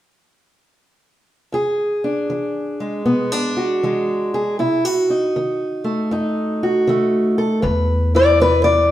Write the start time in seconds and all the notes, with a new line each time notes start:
1.52 E2 G#4
2.04 D4
2.30 E3
2.80 G#3
3.06 B2 B3
3.32 D4
3.57 F#4
3.83 E3 G#3
4.34 G#4
4.59 B2 E4
4.85 F#4
5.10 D#4
5.36 D#3
5.84 A3
6.11 F#2 D#4
6.63 F#4
6.87 D#3 A3
7.38 A4
7.62 E2 B4
8.15 E4 D5
8.40 G#3 B4
8.64 D5